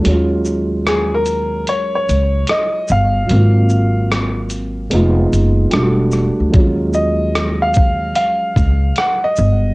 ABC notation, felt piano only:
X:1
M:4/4
L:1/8
Q:"Swing 16ths" 1/4=74
K:Ebm
V:1 name="Felt piano"
[G,A,DF]8 | [G,B,=CF]4 [A,_CEF]2 [=G,=A,=DF^F]2 | [F,G,A,DF]8 |]